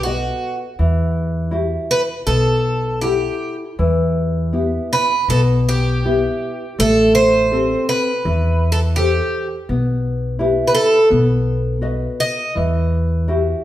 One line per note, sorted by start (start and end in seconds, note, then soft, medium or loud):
0.00 0.29 B1 medium
0.00 0.55 F#4 medium
0.06 0.64 F#4 soft
0.06 0.64 B4 soft
0.06 0.65 D#5 soft
0.79 1.75 E2 medium
0.79 1.50 E3 medium
1.51 2.11 E4 soft
1.51 2.11 F#4 soft
1.51 2.12 G4 soft
1.91 2.01 B4 medium
2.26 3.26 B1 medium
2.26 3.00 B2 soft
2.26 3.01 A4 medium
3.01 3.63 E4 soft
3.01 3.56 G4 medium
3.01 3.64 G4 soft
3.01 3.64 F#5 soft
3.79 4.76 E2 medium
3.79 4.52 E3 medium
4.53 5.13 B3 soft
4.53 5.14 E4 soft
4.53 5.14 G4 soft
4.93 5.29 B4 medium
5.28 6.26 B1 medium
5.28 6.02 B2 medium
5.28 5.40 A4 medium
5.69 6.83 G4 medium
6.04 6.64 B3 soft
6.04 6.64 E4 soft
6.04 6.65 G4 soft
6.78 7.74 A1 medium
6.78 7.50 A3 medium
6.78 7.14 A4 medium
7.15 7.89 C5 medium
7.52 8.11 C4 soft
7.52 8.10 G4 soft
7.52 8.10 A4 soft
7.89 8.72 B4 medium
8.25 9.18 E2 medium
8.25 8.95 E3 medium
8.72 8.79 A4 medium
8.96 9.46 G4 medium
8.96 9.54 G4 soft
8.96 9.54 A4 soft
8.96 9.55 C5 soft
9.69 10.61 B1 medium
9.69 10.37 B3 medium
10.39 10.96 E4 soft
10.39 10.97 G4 soft
10.39 10.97 B4 soft
10.67 10.74 B4 medium
10.75 11.08 A4 medium
11.10 12.06 B1 medium
11.10 11.80 B3 medium
11.82 12.41 F#4 soft
11.82 12.41 B4 soft
11.82 12.41 D#5 soft
12.20 12.54 D#5 medium
12.55 13.52 E2 medium
12.55 13.27 E3 medium
13.28 13.64 E4 soft
13.28 13.64 F#4 soft
13.28 13.64 G4 soft